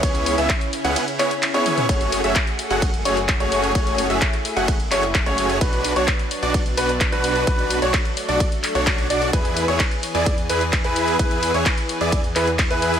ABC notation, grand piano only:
X:1
M:4/4
L:1/16
Q:1/4=129
K:F#m
V:1 name="Grand piano"
c3 e z3 f2 z c z2 c3 | c3 e z3 f2 z c z2 c3 | c3 e z3 f2 z c z2 c3 | B3 c z3 d2 z B z2 B3 |
B3 c z3 d2 z2 c3 d2 | B3 c z3 d2 z B z2 B3 | B3 c z3 d2 z B z2 B3 |]